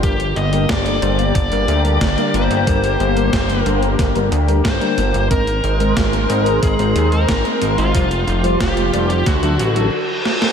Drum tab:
HH |xxxxxxxxxxxxxxxx|xxxxxxxxxxxxxxxx|xxxxxxxxxxxxxxxx|xxxxxxxxxxxx----|
SD |----o-------o---|----o---o---o---|----o-------o---|----o---o-----oo|
BD |o---o---o---o---|o---o---o---o---|o---o---o---o---|o---o---o-------|